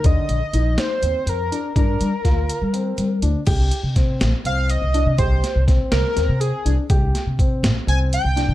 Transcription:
<<
  \new Staff \with { instrumentName = "Analog synth lead" } { \time 7/8 \key c \minor \tempo 4 = 123 ees''4. c''4 bes'4 | bes'2. r8 | r2 f''8 ees''4 | c''4 r8 bes'4 aes'8. r16 |
r2 aes''8 g''4 | }
  \new Staff \with { instrumentName = "Grand piano" } { \time 7/8 \key c \minor d4 ees'4 c'4 d'8 | d'4 f'4 c'4 d'8 | g'4 c'4 c'4 d'8 | g'4 c'4 c'4 d'8 |
g'4 c'4 c'4 d'8 | }
  \new Staff \with { instrumentName = "Upright bass" } { \clef bass \time 7/8 \key c \minor ees,16 r16 bes,,16 r16 bes,,8 r8 ees,16 r16 f,8 r8 | g,8 g16 r16 d,8 r16 g8. g8 d,16 r16 | c,8 r16 c8. bes,,16 r16 c,8. c,8 c16 | c,8 r16 c,8 r16 c,16 r16 ees,16 c8 r16 c,16 r16 |
c,8 r16 c8. bes,,16 r16 c,8. c,8 c16 | }
  \new DrumStaff \with { instrumentName = "Drums" } \drummode { \time 7/8 <hh bd>8 hh8 hh8 <hh sn>8 hh8 hh8 hh8 | <hh bd>8 hh8 <hh bd sn>8 hh8 hh8 hh8 hh8 | <cymc hh bd>8 hh8 <hh bd sn>8 <hh sn>8 hh8 hh8 hh8 | <hh bd>8 <hh sn>8 <hh bd sn>8 <hh sn>8 <hh sn>8 hh8 hh8 |
<hh bd>8 <hh sn>8 <hh bd>8 <hh sn>8 hh8 hh8 <hh sn>8 | }
>>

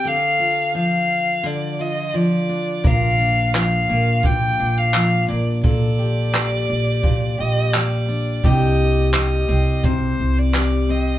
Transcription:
<<
  \new Staff \with { instrumentName = "Violin" } { \time 4/4 \key g \minor \tempo 4 = 86 f''4 f''4 d''8 ees''8 d''4 | f''4 f''4 g''8. f''8. d''8 | d''2~ d''8 ees''8 d''4 | ees''4 ees''4 c''8. d''8. ees''8 | }
  \new Staff \with { instrumentName = "Steel-string acoustic guitar" } { \clef bass \time 4/4 \key g \minor <d a'>8 f'8 f4 d8 f'8 f8 d'8 | <bes, bes'>8 d'8 f8 bes8 bes,8 d'8 f8 bes,8 | <bes, a'>8 g'8 g4 bes,8 g'8 g8 d'8 | <c g'>4 g8 c'8 c4 g8 c'8 | }
  \new Staff \with { instrumentName = "Upright bass" } { \clef bass \time 4/4 \key g \minor r1 | bes,,4. bes,,4 bes,,4 bes,,8~ | bes,,4. bes,,4 bes,,4. | c,4. c,4 c,4. | }
  \new DrumStaff \with { instrumentName = "Drums" } \drummode { \time 4/4 r4 r4 r4 r4 | bd4 hc4 bd4 hc4 | bd4 hc4 bd4 hc4 | bd4 hc4 bd4 hc4 | }
>>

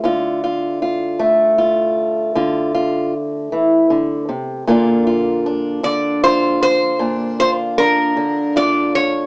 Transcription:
<<
  \new Staff \with { instrumentName = "Resonator guitar played with a steel bar" } { \time 12/8 \key d \minor \tempo 4. = 52 r1. | r4. d''8 c''8 c''4 c''8 bes'4 d''8 cis''8 | }
  \new Staff \with { instrumentName = "Steel-string acoustic guitar" } { \time 12/8 \key d \minor << { f'8 f'8 f'4 f'4 f'8 f'8 r2 | <d bes d' f'>8 f'8 d'4 f'4 d'8 f'8 d'4 f'4 | } \\ { d4. a4. d4. e8 d8 c8 | bes,4. d4. bes,4. d4. | } >> }
>>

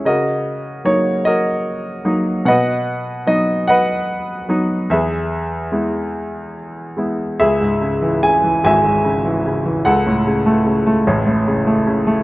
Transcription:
<<
  \new Staff \with { instrumentName = "Grand piano" } { \time 6/8 \key e \major \tempo 4. = 49 << { dis''4 cis''8 dis''4 r8 | fis''4 dis''8 fis''4. | e''2~ e''8 r8 | \key cis \minor e''4 gis''8 gis''4. |
fis''4. r4. | } \\ { <fis' ais'>4. <fis' ais'>4. | <b' dis''>4. <b' dis''>4. | <gis' b'>2~ <gis' b'>8 r8 | gis'4. e''4. |
a'4. r4. | } >> }
  \new Staff \with { instrumentName = "Grand piano" } { \clef bass \time 6/8 \key e \major cis4 <fis ais dis'>4 r8 <fis ais dis'>8 | b,4 <fis b dis'>4 r8 <fis b dis'>8 | e,4 <gis b e'>4 r8 <gis b e'>8 | \key cis \minor cis,16 gis,16 cis16 e16 cis16 e16 <gis,, gis,>16 gis,16 cis16 e16 cis16 e16 |
cis,16 a,16 cis16 a16 cis16 a16 <a,, a,>16 a,16 cis16 a16 cis16 a16 | }
>>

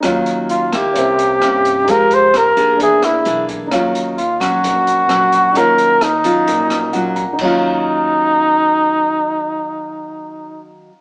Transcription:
<<
  \new Staff \with { instrumentName = "Grand piano" } { \time 4/4 \key ees \minor \tempo 4 = 131 << { r1 | r1 | r1 | r2. ges''8 bes''8 |
r1 | r1 | } \\ { <ees' des'' f''>2 <des' bes' c'' e''>2 | <ees' g' f''>2 <d' gis' ais' e''>2 | <ees' des'' f''>1 | <ees' des'' f''>1 |
<ees' des'' f''>1~ | <ees' des'' f''>1 | } >> }
  \new Staff \with { instrumentName = "Flugelhorn" } { \time 4/4 \key ees \minor r4 f'8 g'2~ g'8 | bes'8 c''8 bes'4 gis'8 e'4 r8 | r4 f'8 ges'2~ ges'8 | bes'4 ees'2~ ees'8 r8 |
ees'1~ | ees'1 | }
  \new Staff \with { instrumentName = "Nylon-string guitar" } { \time 4/4 \key ees \minor << { <ges des' f'>4. <bes fes'>4. <bes des' e'>4 | <aes ees' g'>4 r8 <bes d' aes'>4. <ais d' gis'>4 | <ges des' f'>4 r8 <ges des'>4. <ges des'>4 | <ges des' f'>4 r8 <ges des' f'>4. <ges des' f'>8 r8 |
<ees ges des' f'>1~ | <ees ges des' f'>1 | } \\ { ees2 c2 | f2 e2 | ees2 bes,2 | ees2 bes,2 |
r1 | r1 | } >> }
  \new Staff \with { instrumentName = "Upright bass" } { \clef bass \time 4/4 \key ees \minor ees,4. des,8 c,4 g,4 | f,4. f,8 e,4 b,,4 | ees,4. bes,,8 bes,,4 bes,,4 | ees,4. bes,,8 bes,,4 bes,,4 |
ees,1~ | ees,1 | }
  \new DrumStaff \with { instrumentName = "Drums" } \drummode { \time 4/4 <hh bd ss>8 hh8 hh8 <hh bd ss>8 <hh bd>8 hh8 <hh ss>8 hh8 | <hh bd>8 hh8 <hh ss>8 hh8 <hh bd>8 <hh ss>8 hh8 <hh bd>8 | <hh bd ss>8 hh8 hh8 <hh bd ss>8 <hh bd>8 hh8 <hh ss>8 hh8 | <hh bd>8 hh8 <hh ss>8 hh8 <hh bd>8 <hh ss>8 hh8 <hh bd>8 |
<cymc bd>4 r4 r4 r4 | r4 r4 r4 r4 | }
>>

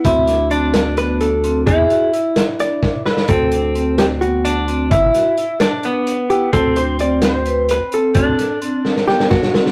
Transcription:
<<
  \new Staff \with { instrumentName = "Hollow-body jazz guitar" } { \time 7/8 \key d \mixolydian \tempo 4 = 130 c'8 r4. b'8 a'4 | gis'4 r4 d''4 b'8 | a'4. g'8 fis'4 r8 | r2. g'8 |
a'8 c''8 d''8 c''4 b'8 a'8~ | a'4 r4 g'8 fis'4 | }
  \new Staff \with { instrumentName = "Clean electric guitar" } { \time 7/8 \key d \mixolydian e'4 d'2~ d'8 | e'2. r8 | c'2~ c'8 d'4 | e'4. d'8 b4. |
c'2.~ c'8 | d'2. r8 | }
  \new Staff \with { instrumentName = "Vibraphone" } { \time 7/8 \key d \mixolydian c'8 d'8 c'4 b4 c'8 | e'8 fis'8 e'4 d'4 e'8 | c'8 d'8 c'4 b4 c'8 | e'8 fis'8 e'4 d'4 e'8 |
c'8 d'8 c'4 b'4 c'8 | c'8 d'8 c'4 b4 c'8 | }
  \new Staff \with { instrumentName = "Analog synth bass" } { \clef bass \time 7/8 \key d \mixolydian d,2.~ d,8 | e,8 r2. | d,2.~ d,8 | g,,8 r2. |
d,2.~ d,8 | d,8 r2. | }
  \new DrumStaff \with { instrumentName = "Drums" } \drummode { \time 7/8 <hh bd>8 <hh sn>8 hh8 <hh sn>8 <hh sn>8 hh8 hh8 | <hh bd>8 hh8 hh8 <hh sn>8 <hh sn>8 <bd sn>8 sn16 sn16 | <hh bd>8 hh8 hh8 <hh sn>8 hh8 hh8 hh8 | <hh bd>8 <hh sn>8 hh8 <hh sn>8 hh8 hh8 hh8 |
<hh bd>8 hh8 hh8 <hh sn>8 hh8 <hh sn>8 hh8 | <hh bd>8 <hh sn>8 hh8 sn16 sn16 sn16 sn16 <bd sn>16 sn16 sn16 sn16 | }
>>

